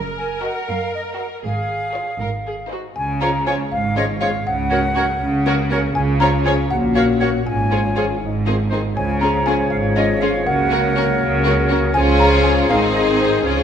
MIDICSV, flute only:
0, 0, Header, 1, 2, 480
1, 0, Start_track
1, 0, Key_signature, -5, "major"
1, 0, Tempo, 506329
1, 1364, Time_signature, 6, 3, 24, 8
1, 2811, Tempo, 500000
1, 13051, End_track
2, 0, Start_track
2, 0, Title_t, "Flute"
2, 0, Program_c, 0, 73
2, 166, Note_on_c, 0, 80, 55
2, 401, Note_off_c, 0, 80, 0
2, 419, Note_on_c, 0, 78, 61
2, 656, Note_on_c, 0, 77, 54
2, 671, Note_off_c, 0, 78, 0
2, 889, Note_off_c, 0, 77, 0
2, 897, Note_on_c, 0, 75, 71
2, 954, Note_off_c, 0, 75, 0
2, 1141, Note_on_c, 0, 78, 49
2, 1197, Note_off_c, 0, 78, 0
2, 1382, Note_on_c, 0, 77, 66
2, 2557, Note_off_c, 0, 77, 0
2, 2821, Note_on_c, 0, 80, 78
2, 3041, Note_off_c, 0, 80, 0
2, 3063, Note_on_c, 0, 82, 65
2, 3294, Note_off_c, 0, 82, 0
2, 3298, Note_on_c, 0, 80, 58
2, 3356, Note_off_c, 0, 80, 0
2, 3547, Note_on_c, 0, 77, 67
2, 3774, Note_off_c, 0, 77, 0
2, 3790, Note_on_c, 0, 75, 67
2, 3848, Note_off_c, 0, 75, 0
2, 4021, Note_on_c, 0, 77, 60
2, 4249, Note_off_c, 0, 77, 0
2, 4254, Note_on_c, 0, 78, 89
2, 5420, Note_off_c, 0, 78, 0
2, 5683, Note_on_c, 0, 80, 85
2, 5741, Note_off_c, 0, 80, 0
2, 5921, Note_on_c, 0, 82, 86
2, 5978, Note_off_c, 0, 82, 0
2, 6167, Note_on_c, 0, 80, 73
2, 6225, Note_off_c, 0, 80, 0
2, 6399, Note_on_c, 0, 78, 75
2, 6457, Note_off_c, 0, 78, 0
2, 6642, Note_on_c, 0, 77, 80
2, 6700, Note_off_c, 0, 77, 0
2, 6884, Note_on_c, 0, 78, 60
2, 7115, Note_off_c, 0, 78, 0
2, 7121, Note_on_c, 0, 80, 78
2, 7837, Note_off_c, 0, 80, 0
2, 8568, Note_on_c, 0, 80, 81
2, 8797, Note_off_c, 0, 80, 0
2, 8803, Note_on_c, 0, 82, 70
2, 9057, Note_on_c, 0, 80, 76
2, 9071, Note_off_c, 0, 82, 0
2, 9280, Note_off_c, 0, 80, 0
2, 9285, Note_on_c, 0, 77, 66
2, 9343, Note_off_c, 0, 77, 0
2, 9524, Note_on_c, 0, 75, 77
2, 9764, Note_on_c, 0, 77, 68
2, 9778, Note_off_c, 0, 75, 0
2, 9994, Note_off_c, 0, 77, 0
2, 10000, Note_on_c, 0, 78, 91
2, 11171, Note_off_c, 0, 78, 0
2, 11431, Note_on_c, 0, 80, 105
2, 11488, Note_off_c, 0, 80, 0
2, 11670, Note_on_c, 0, 82, 80
2, 11728, Note_off_c, 0, 82, 0
2, 11902, Note_on_c, 0, 80, 87
2, 11960, Note_off_c, 0, 80, 0
2, 12146, Note_on_c, 0, 77, 80
2, 12203, Note_off_c, 0, 77, 0
2, 12386, Note_on_c, 0, 75, 75
2, 12443, Note_off_c, 0, 75, 0
2, 12637, Note_on_c, 0, 72, 63
2, 12874, Note_off_c, 0, 72, 0
2, 12880, Note_on_c, 0, 73, 67
2, 13051, Note_off_c, 0, 73, 0
2, 13051, End_track
0, 0, End_of_file